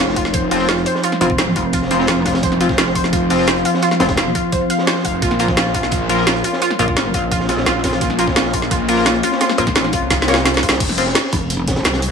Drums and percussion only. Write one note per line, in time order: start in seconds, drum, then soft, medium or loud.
0.08 snare medium
0.16 kick medium
0.16 closed hi-hat medium
0.16 open hi-hat medium
0.25 snare soft
0.34 kick loud
0.34 closed hi-hat medium
0.34 closed hi-hat loud
0.51 closed hi-hat medium
0.51 open hi-hat medium
0.69 snare loud
0.69 closed hi-hat medium
0.78 closed hi-hat soft
0.86 closed hi-hat medium
0.86 open hi-hat medium
0.95 snare soft
1.03 closed hi-hat medium
1.12 snare soft
1.21 closed hi-hat medium
1.30 kick loud
1.38 snare loud
1.38 closed hi-hat medium
1.38 closed hi-hat loud
1.56 kick medium
1.56 closed hi-hat medium
1.56 open hi-hat medium
1.73 kick loud
1.73 closed hi-hat medium
1.82 snare soft
1.91 snare soft
1.91 closed hi-hat medium
2.00 snare medium
2.07 snare loud
2.07 closed hi-hat loud
2.07 closed hi-hat medium
2.25 kick medium
2.25 snare loud
2.25 closed hi-hat medium
2.25 open hi-hat medium
2.34 snare loud
2.34 closed hi-hat medium
2.43 kick loud
2.43 closed hi-hat medium
2.52 snare soft
2.61 closed hi-hat medium
2.69 kick loud
2.69 snare soft
2.78 snare loud
2.78 closed hi-hat medium
2.86 snare medium
2.95 kick medium
2.95 closed hi-hat medium
2.95 open hi-hat medium
3.04 snare soft
3.13 kick loud
3.13 closed hi-hat medium
3.30 closed hi-hat medium
3.30 open hi-hat medium
3.47 snare loud
3.47 closed hi-hat medium
3.56 closed hi-hat soft
3.65 closed hi-hat medium
3.65 open hi-hat medium
3.74 snare soft
3.82 closed hi-hat medium
3.91 snare soft
4.00 snare loud
4.00 closed hi-hat medium
4.09 kick loud
4.09 snare loud
4.09 closed hi-hat medium
4.17 snare loud
4.17 closed hi-hat medium
4.35 kick medium
4.35 closed hi-hat medium
4.35 open hi-hat medium
4.52 kick loud
4.52 closed hi-hat medium
4.70 closed hi-hat medium
4.78 snare soft
4.87 snare loud
4.87 closed hi-hat medium
4.96 snare soft
5.05 kick medium
5.05 closed hi-hat medium
5.05 open hi-hat medium
5.22 kick loud
5.22 closed hi-hat medium
5.31 snare soft
5.39 closed hi-hat medium
5.48 kick loud
5.48 snare medium
5.57 snare loud
5.57 closed hi-hat medium
5.66 snare soft
5.74 kick medium
5.74 closed hi-hat medium
5.74 open hi-hat medium
5.83 snare soft
5.91 kick loud
5.91 closed hi-hat loud
5.91 closed hi-hat medium
6.09 closed hi-hat medium
6.09 open hi-hat medium
6.27 snare loud
6.27 closed hi-hat medium
6.36 closed hi-hat soft
6.44 closed hi-hat medium
6.44 open hi-hat medium
6.53 snare soft
6.62 closed hi-hat medium
6.71 snare soft
6.79 closed hi-hat medium
6.88 kick loud
6.96 snare loud
6.96 closed hi-hat medium
7.14 kick medium
7.14 closed hi-hat medium
7.14 open hi-hat medium
7.32 kick loud
7.32 closed hi-hat medium
7.40 snare soft
7.49 snare soft
7.49 closed hi-hat medium
7.57 snare medium
7.66 snare loud
7.66 closed hi-hat medium
7.84 kick medium
7.84 snare loud
7.84 closed hi-hat medium
7.84 open hi-hat medium
7.92 snare loud
7.92 closed hi-hat medium
8.01 kick loud
8.01 closed hi-hat medium
8.10 snare soft
8.19 closed hi-hat medium
8.27 kick loud
8.27 snare medium
8.36 snare loud
8.36 closed hi-hat loud
8.36 closed hi-hat medium
8.45 snare soft
8.53 kick medium
8.53 closed hi-hat medium
8.53 open hi-hat medium
8.62 snare soft
8.71 kick loud
8.71 closed hi-hat medium
8.71 closed hi-hat loud
8.88 closed hi-hat medium
8.88 open hi-hat medium
9.06 snare loud
9.06 closed hi-hat medium
9.14 closed hi-hat soft
9.23 closed hi-hat medium
9.23 open hi-hat medium
9.32 snare soft
9.41 snare loud
9.41 closed hi-hat medium
9.41 closed hi-hat loud
9.50 snare soft
9.58 closed hi-hat medium
9.67 kick loud
9.67 snare medium
9.67 closed hi-hat soft
9.75 snare loud
9.75 closed hi-hat medium
9.75 closed hi-hat loud
9.84 snare soft
9.93 kick medium
9.93 closed hi-hat medium
9.93 open hi-hat medium
10.10 kick loud
10.10 snare medium
10.10 closed hi-hat medium
10.10 closed hi-hat loud
10.20 snare soft
10.22 snare medium
10.28 snare loud
10.28 closed hi-hat medium
10.34 snare medium
10.34 closed hi-hat medium
10.37 snare loud
10.45 snare loud
10.45 snare medium
10.45 closed hi-hat loud
10.45 closed hi-hat medium
10.54 snare soft
10.54 closed hi-hat soft
10.57 snare medium
10.63 kick medium
10.63 closed hi-hat medium
10.63 open hi-hat medium
10.69 snare loud
10.69 closed hi-hat soft
10.72 snare loud
10.72 closed hi-hat medium
10.80 kick loud
10.80 closed hi-hat medium
10.80 crash loud
10.89 snare soft
10.97 closed hi-hat medium
11.06 snare medium
11.15 snare loud
11.15 closed hi-hat medium
11.15 closed hi-hat loud
11.24 snare soft
11.33 kick loud
11.33 closed hi-hat medium
11.33 open hi-hat medium
11.50 closed hi-hat loud
11.50 closed hi-hat medium
11.68 kick loud
11.68 snare loud
11.68 closed hi-hat medium
11.76 snare loud
11.76 closed hi-hat medium
11.84 snare loud
11.84 closed hi-hat medium
11.84 closed hi-hat loud
11.93 snare loud
11.93 closed hi-hat medium
12.02 closed hi-hat medium
12.02 open hi-hat medium